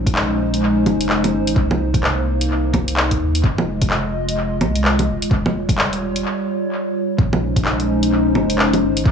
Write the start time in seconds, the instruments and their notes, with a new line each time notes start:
Already playing: sub bass A#1, ambient pad G#3 C#4 D#4 C5
0.07 kick, closed hi-hat
0.15 clap
0.54 closed hi-hat
0.86 sub bass F1, closed hi-hat, low bongo
1.01 closed hi-hat
1.09 clap
1.24 closed hi-hat, low bongo
1.33 sub bass G#1
1.47 closed hi-hat
1.56 sub bass C2, ambient pad A#3, kick
1.71 low bongo
1.94 kick, closed hi-hat
2.04 clap
2.41 closed hi-hat
2.50 sub bass C2
2.73 kick, closed hi-hat, low bongo
2.88 closed hi-hat
2.97 clap
3.11 kick, closed hi-hat
3.20 sub bass D#2
3.35 closed hi-hat
3.43 sub bass F1, ambient pad G#3 F4 D#5, kick
3.58 low bongo
3.82 kick, closed hi-hat
3.90 clap
4.29 closed hi-hat
4.61 sub bass C2, closed hi-hat, low bongo
4.76 closed hi-hat
4.85 clap
4.99 closed hi-hat, low bongo
5.08 sub bass D#1
5.22 closed hi-hat
5.31 sub bass D#1, ambient pad G3 F4 C#5, kick
5.46 low bongo
5.69 kick, closed hi-hat
5.78 clap
5.93 closed hi-hat
6.16 closed hi-hat
7.18 sub bass A#1, ambient pad G#3 C#4 D#4 C5, kick
7.33 low bongo
7.56 kick, closed hi-hat
7.65 clap
7.80 closed hi-hat
8.03 closed hi-hat
8.35 sub bass F1, low bongo
8.50 closed hi-hat
8.59 clap
8.73 closed hi-hat, low bongo
8.82 sub bass G#1
8.97 closed hi-hat
9.05 sub bass C2, ambient pad A#3 D#4, kick